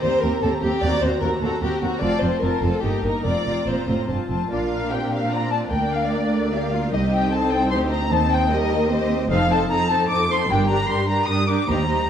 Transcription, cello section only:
0.04 0.12 D#2 soft
0.23 0.31 D#2 soft
0.42 0.50 D#2 soft
0.63 0.71 D#2 soft
0.83 0.91 D#2 soft
1.02 1.10 D#2 soft
1.22 1.30 D#2 soft
1.43 1.51 D#2 soft
1.62 1.70 D#2 soft
1.82 1.90 D#2 soft
2.02 2.10 F2 soft
2.22 2.30 F2 soft
2.42 2.50 F2 soft
2.63 2.71 F2 soft
2.83 2.91 G2 soft
3.03 3.11 G2 soft
3.25 3.33 F2 soft
3.46 3.54 F2 soft
3.68 3.87 A#2 soft
3.89 4.10 A2 soft
4.09 4.17 G2 soft
4.30 4.51 F2 soft
4.50 5.68 A#2 soft
5.73 6.91 D2 soft
6.94 7.71 C2 soft
7.73 8.12 D2 soft
8.11 9.30 D#2 soft
9.30 9.65 F2 soft
9.68 10.04 F2 soft
10.09 10.44 F2 medium
10.48 10.83 G2 medium
10.88 11.23 G2 soft
11.27 11.63 G2 medium
11.67 12.03 D#2 soft

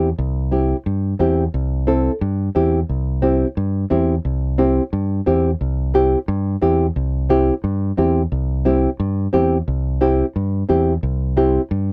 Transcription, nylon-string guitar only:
0.51 0.75 C4 medium
0.51 0.76 E4 medium
0.51 0.76 G4 medium
1.19 1.43 C4 medium
1.19 1.44 E4 medium
1.19 1.44 G4 medium
1.87 2.11 C4 medium
1.87 2.11 E4 medium
1.87 2.11 A4 medium
2.55 2.79 C4 medium
2.55 2.79 E4 medium
2.55 2.79 G4 medium
3.22 3.46 C4 medium
3.22 3.47 E4 medium
3.22 3.47 G4 medium
3.90 4.14 C4 medium
3.90 4.14 E4 medium
3.90 4.15 G4 medium
4.58 4.82 C4 medium
4.58 4.82 E4 medium
4.58 4.82 G4 medium
5.26 5.50 C4 medium
5.26 5.50 E4 medium
5.26 5.50 G4 medium
5.94 6.18 C4 medium
5.94 6.18 E4 medium
5.94 6.18 G4 medium
6.62 6.85 C4 medium
6.62 6.85 E4 medium
6.62 6.86 G4 medium
7.29 7.53 C4 medium
7.29 7.53 E4 medium
7.29 7.54 G4 medium
7.97 8.21 C4 medium
7.97 8.21 E4 medium
7.97 8.22 G4 medium
8.65 8.89 C4 medium
8.65 8.89 E4 medium
8.65 8.89 G4 medium
9.33 9.57 C4 medium
9.33 9.57 E4 medium
9.33 9.57 G4 medium
10.01 10.25 C4 medium
10.01 10.25 E4 medium
10.01 10.25 G4 medium
10.69 10.93 C4 medium
10.69 10.93 E4 medium
10.69 10.93 G4 medium
11.37 11.61 C4 medium
11.37 11.61 E4 medium
11.37 11.61 G4 medium

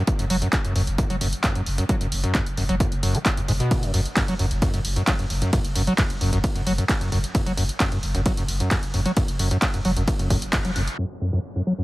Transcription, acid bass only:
0.19 0.25 F#2 medium
0.30 0.37 F#3 medium
0.42 0.48 F#2 medium
0.65 0.74 F#2 medium
0.76 0.82 F#2 loud
0.98 1.05 F#2 medium
1.10 1.16 F#3 medium
1.21 1.28 F#2 medium
1.44 1.53 F#2 medium
1.55 1.62 F#2 loud
1.78 1.84 F#2 medium
1.89 1.96 F#3 medium
2.01 2.07 F#2 medium
2.24 2.33 F#2 medium
2.57 2.64 F#2 medium
2.69 2.75 F#3 medium
2.80 2.87 F#2 medium
3.03 3.16 F#2 loud
3.15 3.18 F#3 loud
3.37 3.41 E2 medium
3.48 3.52 G#2 loud
3.60 3.84 B2 medium
3.83 3.92 F#2 medium
3.94 4.00 F#2 loud
4.17 4.23 F#2 medium
4.28 4.34 F#3 medium
4.39 4.46 F#2 medium
4.62 4.72 F#2 medium
4.74 4.80 F#2 loud
4.96 5.02 F#2 medium
5.08 5.14 F#3 medium
5.19 5.25 F#2 medium
5.42 5.51 F#2 medium
5.53 5.59 F#2 loud
5.76 5.82 F#2 medium
5.87 5.93 F#3 medium
5.98 6.05 F#2 medium
6.21 6.31 F#2 medium
6.33 6.39 F#2 loud
6.55 6.62 F#2 medium
6.67 6.73 F#3 medium
6.78 6.84 F#2 medium
7.01 7.10 F#2 medium
7.12 7.18 F#2 loud
7.35 7.41 F#2 medium
7.46 7.52 F#3 medium
7.57 7.64 F#2 medium
7.80 7.90 F#2 medium
7.92 7.98 F#2 loud
8.15 8.21 F#2 medium
8.26 8.32 F#3 medium
8.37 8.43 F#2 medium
8.60 8.69 F#2 medium
8.94 9.00 F#2 medium
9.06 9.12 F#3 medium
9.17 9.23 F#2 medium
9.39 9.49 F#2 medium
9.51 9.57 F#2 loud
9.74 9.80 F#2 medium
9.85 9.91 F#3 medium
9.97 10.03 F#2 medium
10.19 10.28 F#2 medium
10.30 10.37 F#2 loud
10.53 10.59 F#2 medium
10.65 10.71 F#3 medium
10.76 10.82 F#2 medium
10.98 11.05 F#2 medium
11.21 11.31 F#2 medium
11.33 11.39 F#2 medium
11.56 11.62 F#2 medium
11.67 11.73 F#3 medium
11.78 11.84 F#2 medium

